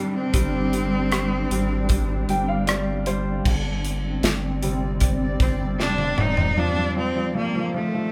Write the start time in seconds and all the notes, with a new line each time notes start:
Already playing: D#3 G3 C4 D4 G4
0.16 C4
0.34 G1 G3, kick, closed hi-hat
0.73 G3, closed hi-hat
1.12 G3, cross-stick, closed hi-hat
1.51 G#1 G3, closed hi-hat
1.89 G3, kick, closed hi-hat
2.28 G1 G3 G5, closed hi-hat
2.48 F5
2.67 G3 D5, cross-stick, closed hi-hat
3.06 G3 C5, closed hi-hat
3.45 G1 G3 C4 D5, kick, crash
3.85 closed hi-hat
4.23 G1, snare, closed hi-hat
4.62 C3 G3 C4, closed hi-hat
5.00 kick, closed hi-hat
5.40 G1 C4, kick, closed hi-hat
5.78 F1 D4, snare
5.98 high tom
6.18 D#1 D#4, mid tom
6.37 floor tom
6.57 D#3 F3 D4 A4 C5 F5
6.76 F3
6.96 F3 C4
7.16 F3
7.35 F3 A#3
7.55 F3
7.74 F3 A3
7.94 F3